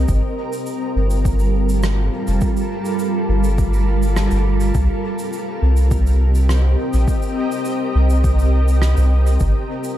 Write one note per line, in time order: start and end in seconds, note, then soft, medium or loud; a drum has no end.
0.00 1.77 C4 medium
0.00 1.89 G4 medium
0.00 9.98 A#4 medium
0.08 0.22 G1 loud
0.08 4.74 G3 medium
0.08 kick loud
0.08 shaker medium
0.30 5.67 F4 medium
0.49 4.74 A4 medium
0.49 shaker medium
0.66 shaker medium
0.96 2.10 G1 medium
1.10 shaker medium
1.25 kick loud
1.25 shaker medium
1.39 shaker soft
1.69 shaker soft
1.83 cross-stick medium
1.83 shaker medium
2.27 2.40 F1 medium
2.27 shaker medium
2.41 kick loud
2.41 shaker medium
2.57 shaker soft
2.85 shaker soft
2.99 shaker medium
3.29 4.29 G1 medium
3.44 shaker medium
3.58 kick loud
3.58 shaker medium
3.73 shaker soft
4.03 shaker medium
4.16 cross-stick medium
4.16 shaker medium
4.31 4.72 G1 medium
4.31 shaker soft
4.60 shaker soft
4.74 4.88 C2 loud
4.74 9.98 C4 medium
4.74 kick loud
4.74 shaker medium
5.00 9.98 G4 medium
5.19 shaker medium
5.33 shaker medium
5.50 9.41 D#5 medium
5.62 6.76 C2 medium
5.77 shaker medium
5.91 kick medium
5.91 shaker medium
6.07 shaker soft
6.35 shaker medium
6.49 cross-stick medium
6.49 shaker medium
6.93 7.06 A#1 medium
6.93 shaker medium
7.08 kick medium
7.08 shaker medium
7.22 shaker soft
7.52 shaker soft
7.65 shaker medium
7.95 8.95 C2 medium
8.10 shaker soft
8.24 kick loud
8.24 shaker medium
8.39 shaker soft
8.68 shaker medium
8.82 cross-stick medium
8.82 shaker medium
8.97 9.38 C2 medium
8.97 shaker soft
9.27 shaker medium
9.40 9.54 G1 loud
9.40 9.98 G3 medium
9.40 kick medium
9.40 shaker medium
9.59 9.98 F4 medium
9.84 shaker medium